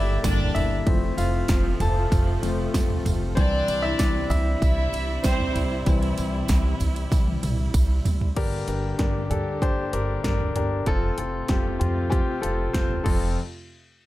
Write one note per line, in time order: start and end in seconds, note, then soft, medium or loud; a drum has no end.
0.00 0.18 G1 medium
0.00 0.22 D3 medium
0.00 0.84 D3 medium
0.00 0.23 G3 soft
0.00 0.23 A#3 medium
0.00 0.84 A#3 medium
0.00 0.89 D4 medium
0.00 0.20 E4 medium
0.00 0.57 E4 medium
0.00 0.84 G4 medium
0.00 0.89 G4 medium
0.00 0.89 A4 medium
0.00 0.89 D5 loud
0.00 0.20 E5 loud
0.00 0.55 E5 loud
0.00 0.89 G5 loud
0.00 0.89 A5 loud
0.23 0.50 G1 loud
0.23 0.52 D3 medium
0.23 0.52 G3 soft
0.23 0.52 A#3 medium
0.23 0.69 D4 loud
0.23 0.69 D5 loud
0.23 kick loud
0.23 snare loud
0.23 ride medium
0.23 tambourine medium
0.40 floor tom medium
0.55 0.81 G1 loud
0.55 1.15 E4 medium
0.55 1.14 E5 loud
0.55 floor tom medium
0.55 ride medium
0.55 tambourine medium
0.86 1.12 F1 loud
0.86 8.33 C3 medium
0.86 2.41 F3 medium
0.86 3.34 F3 loud
0.86 3.35 A3 medium
0.86 2.41 A3 medium
0.86 2.41 C4 medium
0.86 kick loud
0.86 ride medium
1.17 1.43 F1 loud
1.17 1.77 F4 medium
1.17 1.76 F5 medium
1.17 ride medium
1.17 tambourine medium
1.48 1.75 F1 loud
1.48 kick loud
1.48 snare loud
1.48 ride medium
1.48 tambourine medium
1.80 2.06 F1 loud
1.80 2.40 A4 medium
1.80 2.39 A5 medium
1.80 floor tom medium
1.80 ride medium
1.80 tambourine soft
2.12 2.38 F1 loud
2.12 kick loud
2.12 ride medium
2.12 tambourine medium
2.42 2.69 F1 medium
2.42 2.71 F3 medium
2.42 2.71 A3 medium
2.42 2.71 C4 medium
2.42 ride medium
2.42 tambourine soft
2.74 3.00 F1 loud
2.74 kick loud
2.74 snare loud
2.74 ride medium
2.74 tambourine medium
2.90 floor tom medium
3.05 3.31 F1 loud
3.05 floor tom medium
3.05 ride medium
3.05 tambourine soft
3.35 3.63 C2 loud
3.35 5.82 E3 medium
3.35 8.33 G3 medium
3.35 5.83 G3 medium
3.35 3.81 C4 medium
3.35 4.26 D4 loud
3.35 8.33 E4 loud
3.35 3.84 C5 medium
3.35 4.27 D5 loud
3.35 kick loud
3.35 ride medium
3.35 tambourine soft
3.68 3.94 C2 loud
3.68 ride medium
3.68 tambourine medium
3.82 3.99 E4 loud
3.82 3.99 E5 loud
3.99 4.25 C2 medium
3.99 4.30 D4 medium
3.99 4.31 D5 medium
3.99 kick loud
3.99 snare loud
3.99 ride medium
3.99 tambourine medium
4.30 4.56 C2 loud
4.30 7.71 E4 medium
4.30 7.70 E5 loud
4.30 floor tom medium
4.30 ride medium
4.30 tambourine medium
4.61 4.88 C2 loud
4.61 5.20 E4 loud
4.61 5.20 E5 loud
4.61 kick loud
4.61 ride medium
4.61 tambourine soft
4.93 5.18 C2 medium
4.93 ride medium
4.93 tambourine soft
5.23 5.50 C2 loud
5.23 5.68 C4 loud
5.23 5.68 C5 loud
5.23 kick loud
5.23 snare loud
5.23 ride medium
5.23 tambourine medium
5.40 floor tom medium
5.55 5.81 C2 loud
5.55 floor tom medium
5.55 ride medium
5.55 tambourine soft
5.86 6.12 C2 loud
5.86 6.76 E3 medium
5.86 6.76 G3 soft
5.86 6.77 C4 medium
5.86 kick loud
5.86 ride medium
5.86 tambourine soft
6.03 ride soft
6.18 6.44 C2 loud
6.18 ride medium
6.18 tambourine medium
6.48 6.75 C2 loud
6.48 kick loud
6.48 snare loud
6.48 ride medium
6.48 tambourine medium
6.80 7.06 C2 medium
6.80 floor tom medium
6.80 ride medium
6.80 tambourine soft
6.96 ride soft
7.12 7.37 C2 loud
7.12 kick loud
7.12 high tom medium
7.12 ride medium
7.12 tambourine medium
7.27 high tom medium
7.43 7.69 C2 loud
7.43 mid tom medium
7.43 ride medium
7.43 tambourine soft
7.74 8.00 C2 loud
7.74 kick loud
7.74 ride medium
7.74 tambourine medium
8.05 8.31 C2 medium
8.05 floor tom loud
8.05 ride medium
8.05 tambourine soft
8.21 floor tom medium
8.36 8.62 G1 medium
8.36 9.27 G2 medium
8.36 9.26 D3 medium
8.36 10.84 D3 medium
8.36 10.84 A#3 medium
8.36 8.66 D4 medium
8.36 8.66 G4 medium
8.36 10.84 G4 medium
8.36 8.66 A#4 loud
8.36 kick medium
8.36 closed hi-hat medium
8.36 crash medium
8.68 8.93 G1 medium
8.68 8.97 D4 medium
8.68 8.97 G4 medium
8.68 8.97 A#4 medium
8.68 closed hi-hat medium
8.98 9.25 G1 medium
8.98 9.28 D4 medium
8.98 9.28 G4 medium
8.98 9.28 A#4 medium
8.98 kick loud
8.98 snare loud
8.98 closed hi-hat medium
9.30 9.69 G2 medium
9.30 9.59 D4 medium
9.30 9.59 G4 medium
9.30 9.60 A4 medium
9.30 closed hi-hat medium
9.30 floor tom medium
9.62 9.91 D4 medium
9.62 9.91 G4 medium
9.62 9.91 C5 loud
9.62 kick loud
9.62 closed hi-hat medium
9.93 10.19 G1 medium
9.93 10.22 D4 medium
9.93 10.22 G4 medium
9.93 10.22 A#4 medium
9.93 closed hi-hat medium
10.24 10.50 G1 medium
10.24 10.53 D4 medium
10.24 10.53 G4 medium
10.24 10.53 A#4 loud
10.24 kick loud
10.24 snare loud
10.24 closed hi-hat loud
10.40 floor tom medium
10.56 10.81 G1 loud
10.56 10.85 D4 medium
10.56 10.85 G4 medium
10.56 10.85 A#4 medium
10.56 closed hi-hat medium
10.56 floor tom medium
10.86 11.12 F1 loud
10.86 13.03 C3 medium
10.86 11.77 C3 medium
10.86 13.03 A3 medium
10.86 11.16 C4 loud
10.86 13.03 F4 medium
10.86 11.16 F4 medium
10.86 11.16 A4 loud
10.86 kick medium
10.86 closed hi-hat medium
11.18 11.44 F1 medium
11.18 11.47 C4 medium
11.18 11.47 F4 medium
11.18 11.47 A4 medium
11.18 closed hi-hat medium
11.48 11.75 F1 medium
11.48 11.78 C4 medium
11.48 11.78 F4 medium
11.48 11.78 G4 medium
11.48 kick loud
11.48 snare loud
11.48 closed hi-hat medium
11.80 12.19 F2 loud
11.80 12.08 C4 medium
11.80 12.09 F4 medium
11.80 12.09 G4 medium
11.80 closed hi-hat medium
11.80 floor tom medium
12.10 12.39 C4 loud
12.10 12.40 F4 medium
12.10 12.40 G4 loud
12.10 kick loud
12.10 closed hi-hat medium
12.41 12.69 F1 medium
12.41 12.71 C4 medium
12.41 12.71 F4 medium
12.41 12.71 A4 medium
12.41 closed hi-hat medium
12.73 13.00 F1 medium
12.73 13.02 C4 medium
12.73 13.02 F4 medium
12.73 13.03 C5 loud
12.73 kick loud
12.73 snare loud
12.73 closed hi-hat medium
12.90 floor tom medium
13.04 13.35 F1 medium
13.04 13.34 F2 medium
13.04 13.35 C3 medium
13.04 13.35 A3 medium
13.04 13.34 C4 medium
13.04 13.34 F4 medium
13.04 13.35 F4 medium
13.04 13.34 A4 medium
13.04 kick loud
13.04 crash medium